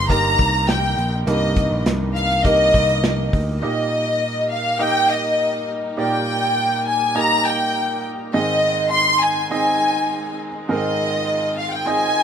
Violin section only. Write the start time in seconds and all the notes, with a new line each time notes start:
0.11 A#5
0.69 G5
1.27 D#5
2.16 F5
2.45 D#5
3.62 D#5
4.52 F5
4.81 G5
5.11 D#5
6.00 G5
6.87 G#5
7.17 A#5
7.45 G5
8.33 D#5
8.92 C6
9.22 G#5
9.52 G#5
10.71 D#5
11.59 F5
11.72 G5
11.87 G#5